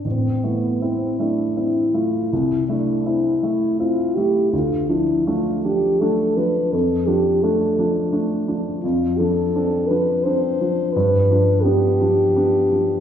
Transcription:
X:1
M:3/4
L:1/8
Q:1/4=84
K:Am
V:1 name="French horn"
C B, C D E F | E D E2 F G | F E F G A B | A G A2 z2 |
[K:Ddor] F A2 B c2 | B2 G4 |]
V:2 name="Grand piano"
A,,, [A,E] [CE] [A,E] [CE] [A,E] | C,, [A,E] [CE] [A,E] [CE] [A,E] | D,, [F,D] [A,D] [F,D] [A,D] [F,D] | F,, [F,D] [A,D] [F,D] [A,D] [F,D] |
[K:Ddor] F,, [F,D] [CD] [F,D] [CD] [F,D] | G,, [F,D] [B,D] [F,D] [B,D] [F,D] |]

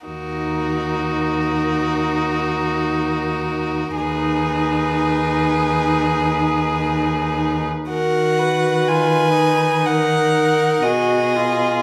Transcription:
X:1
M:4/4
L:1/8
Q:1/4=61
K:Ebm
V:1 name="Violin"
B8 | c8 | g2 a2 g2 e2 |]
V:2 name="Violin"
G8 | A8 | B c3 B2 A2 |]
V:3 name="Viola"
E8 | E8 | G2 F E3 G F |]
V:4 name="Cello" clef=bass
E,,8 | E,,8 | E,6 C,2 |]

